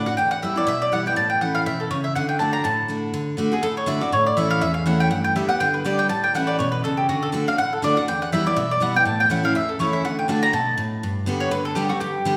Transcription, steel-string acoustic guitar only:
Already playing: A2
0.07 D4 F#4
0.18 E2
0.42 E3 G3 B3 E4
0.56 B3 E4
0.67 B2
0.92 E3 G3 B3 E4
1.06 B3 E4
1.16 A2
1.41 E3 A3 C#4 E4
1.66 B2
1.91 C#3
2.16 D3
2.40 D3 A3 D4 F#4
2.65 A2
2.88 D3 A3 D4 F#4
3.14 D3
3.37 D3 A3 D4 F#4
3.51 D4 F#4
3.63 A2
3.86 D3 A3 D4 F#4
4.01 D4 F#4
4.12 A2
4.37 E3 A3 C#4 E4
4.61 E2
4.86 E3 A3 C#4 E4
5.11 G2
5.36 D3 G3 B3 G4
5.49 B3 G4
5.60 D3
5.84 D3 G3 B3 G4
6.09 A2
6.34 E3 A3 C#4 E4
6.60 B2
6.85 C#3
7.09 D3
7.32 D3 A3 D4 F#4
7.47 D4 F#4
7.58 A2
7.82 D3 A3 D4 F#4
7.96 D4 F#4
8.08 E2
8.32 E3 G3 B3 E4
8.46 B3 E4
8.56 B2
8.80 E3 G3 B3 E4
8.94 B3 E4
9.05 A2
9.30 E3 A3 C#4 E4
9.43 C#4 E4
9.55 E2
9.79 E3 A3 C#4 E4
10.05 D3
10.28 D3 A3 D4 F#4
10.53 B2
10.78 A2
11.03 G2
11.26 D3 G3 B3 G4
11.51 D3
11.76 D3 G3 B3 G4
11.90 B3 G4
12.01 G2
12.25 D3 G3 B3 G4

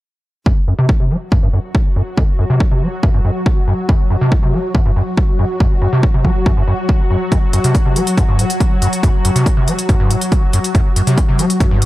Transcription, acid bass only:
0.46 F#2
0.68 F#2
0.79 C3
0.89 A2
1.00 C3
1.10 F#3
1.32 G2
1.43 G2
1.53 F#2
1.96 F#2
2.18 F#2
2.39 F#2
2.50 C3
2.60 A2
2.71 C3
2.82 F#3
3.03 G2
3.14 G2
3.25 F#2
3.68 F#2
3.89 F#2
4.10 F#2
4.21 C3
4.32 A2
4.43 C3
4.53 F#3
4.75 G2
4.86 G2
4.96 F#2
5.39 F#2
5.60 F#2
5.82 F#2
5.93 C3
6.03 A2
6.14 C3
6.25 F#3
6.46 G2
6.57 G2
6.68 F#2
7.11 F#2
7.32 F#2
7.53 F#2
7.64 C3
7.75 A2
7.86 C3
7.96 F#3
8.18 G2
8.29 G2
8.39 A2
8.82 F#2
9.03 F#2
9.25 F#2
9.36 C3
9.46 A2
9.57 C3
9.68 F#3
9.89 G2
10.00 G2
10.10 A2
10.53 F#2
10.75 F#2
10.96 F#2
11.07 C3
11.18 A2
11.29 C3
11.39 F#3
11.60 G2
11.71 G2
11.82 A2

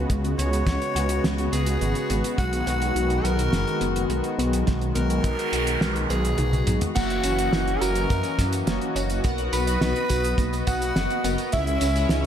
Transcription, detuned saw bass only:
0.10 C#2
0.38 C#2
0.67 C#2
0.95 C#2
1.24 C#2
1.53 C#2
1.81 G#1
2.10 G#1
2.38 B1
2.67 B1
2.96 B1
3.24 B1
3.53 F#1
3.81 F#1
4.10 B1
4.39 B1
4.68 B1
4.96 B1
5.24 B1
5.53 B1
5.81 B1
6.10 B1
6.38 B1
6.67 B1
6.97 F#1
7.24 F#1
7.53 F#1
7.82 F#1
8.10 F#2
8.39 F#2
8.67 F#1
8.96 F#1
9.25 B1
9.53 B1
9.81 B1
10.10 B1
10.38 B1
10.68 B1
10.96 F#1
11.24 F#1
11.54 C#2
11.81 C#2
12.10 C#2

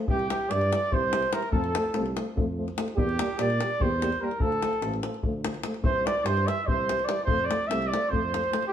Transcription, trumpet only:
0.10 G4
0.32 G4
0.52 D5
0.93 C5
1.34 A#4
1.51 A4
2.98 G4
3.42 D5
3.81 C5
4.24 A#4
4.43 A4
5.84 C5
6.06 D5
6.24 C5
6.46 E5
6.66 C5
7.06 D5
7.25 C5
7.44 D5
7.67 E5
7.87 D5
8.09 C5
8.69 G4

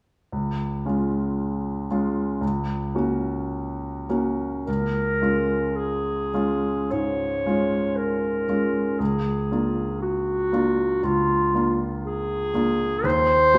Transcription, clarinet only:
4.67 A#4
5.76 G#4
6.91 C#5
7.96 A#4
8.99 G#4
10.02 F#4
11.04 F4
12.06 G#4
13.05 C5

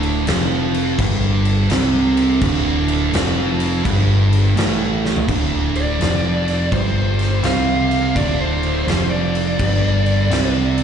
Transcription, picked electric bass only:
Already playing: D1
0.28 F1
0.99 G1
1.71 C2
2.42 D1
3.13 F1
3.85 G1
4.58 A1
5.29 D1
6.01 F1
6.72 G1
7.43 C2
8.16 D1
8.87 F1
9.60 G1
10.30 C2

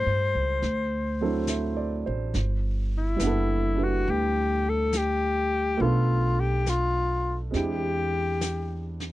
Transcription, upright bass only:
0.06 G2
0.35 C#2
0.62 D2
2.07 A1
2.35 G1
3.21 F#1
4.08 D2
5.80 B1
7.54 E2

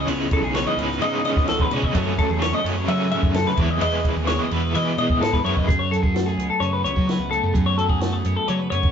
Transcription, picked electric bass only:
0.07 C#2
0.42 B1
0.77 C#2
1.00 C#3
1.36 C#2
1.71 B2
1.95 F#2
2.30 E2
2.65 F#2
2.88 F#3
3.23 F#2
3.57 E2
3.81 E2
4.16 D#2
4.51 E2
4.75 E3
4.98 B2
5.21 G#2
5.44 F#2
5.68 F#2
6.38 C#2
6.60 F#2
6.84 C#2
6.96 F#3
7.19 C#2
7.43 F#2
7.54 F#2
8.25 F#2
8.49 F#3
8.72 F#2

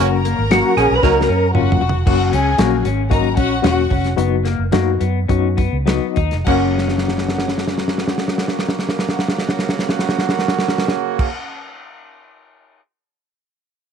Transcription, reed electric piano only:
Already playing: F#3
0.00 A#3 C#4 F#4
0.50 F#3 A#3 C#4 F#4
1.02 F#3 A#3 C#4 F#4
1.54 F#3 A#3 C#4 F4
2.06 F#3 A#3 C#4 F#4
2.58 F#3 A#3 C#4 F#4
3.10 F#3 A#3 C#4 F#4
3.62 F#3 A#3 C#4 F#4
4.16 F#3 B3 D#4 F#4
4.72 F#3 B3 D#4 F#4
5.29 F#3 B3 D#4 F#4
5.86 F#3 B3 D#4 F#4 D#5
6.45 F#3 A#3 C#4
6.49 F#4

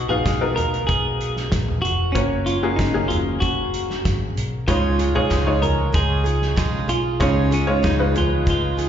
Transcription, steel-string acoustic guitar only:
4.67 C#3 G#3 D#4 F4 G#4
4.99 D#4 F4 G#4
5.30 C#3 G#3 D#4 F4 G#4
5.62 D#4 F4 G#4
5.92 G#3 D#4 F4 G#4
6.24 D#4 F4 G#4
6.56 C#3 G#3 D#4 F4 G#4
6.88 D#4 F4 G#4
7.20 C#3 G#3 D#4 F4 G#4
7.51 D#4 F4 G#4
7.83 C#3 G#3 D#4 F4 G#4
8.15 D#4 F4 G#4
8.46 G#3 D#4 F4 G#4
8.77 D#4 F4 G#4

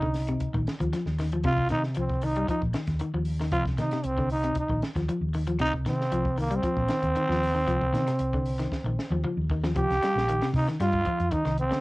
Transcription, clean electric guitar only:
0.02 D3
0.29 C3
0.54 D#3
0.81 F3
0.93 F3
1.20 D#3
1.33 F3
1.45 C3
1.70 D#3
1.97 F3
2.23 D#3
2.37 G3
2.48 F3
2.74 D#3
3.01 D#3
3.14 F3
3.41 D#3
3.53 F3
3.78 D#3
3.93 C3
4.18 D3
4.44 C3
4.70 D#3
4.96 F3
5.09 F3
5.35 D#3
5.47 F3
5.60 C3
5.86 D#3
6.12 F3
6.38 D#3
6.51 G3
6.64 F3
6.90 D#3
7.16 D#3
7.29 F3
7.55 D#3
7.67 F3
7.94 D#3
8.08 muted clean electric guitar stroke
8.34 D3
8.59 D#3
8.86 D#3
9.12 F3
9.24 F3
9.51 D#3
9.64 F3
9.76 F3
10.03 G3
10.29 D#3
10.43 C3
10.69 D#3
10.81 G3
11.07 F3
11.32 D#3
11.45 D#3
11.71 D3

